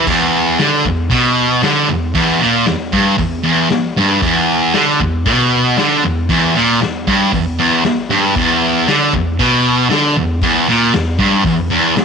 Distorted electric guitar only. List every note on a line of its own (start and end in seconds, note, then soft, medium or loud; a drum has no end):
0.07 0.58 E2 loud
0.59 0.84 D3 loud
0.85 1.06 E2 medium
1.10 1.62 B2 loud
1.63 1.88 D3 loud
1.89 2.09 E2 medium
2.15 2.40 E2 loud
2.41 2.66 A#2 loud
2.67 2.88 E2 medium
2.93 3.18 G2 loud
3.18 3.39 E2 medium
3.44 3.69 E2 loud
3.70 muted distorted electric guitar stroke medium
3.97 4.22 G2 loud
4.22 4.73 E2 loud
4.74 4.99 D3 loud
5.00 5.21 E2 medium
5.26 5.77 B2 loud
5.78 6.03 D3 medium
6.04 6.24 E2 medium
6.30 6.54 E2 loud
6.55 6.80 A#2 loud
6.82 7.02 E2 medium
7.08 7.32 G2 loud
7.33 7.53 E2 medium
7.59 7.83 E2 loud
7.85 muted distorted electric guitar stroke medium
8.10 8.35 G2 medium
8.36 8.87 E2 loud
8.87 9.12 D3 loud
9.13 9.34 E2 medium
9.39 9.89 B2 loud
9.90 10.15 D3 loud
10.17 10.37 E2 medium
10.43 10.67 E2 loud
10.68 10.93 A#2 loud
10.93 11.14 E2 medium
11.19 11.44 G2 loud
11.45 11.65 E2 medium
11.70 11.95 E2 loud
11.97 muted distorted electric guitar stroke medium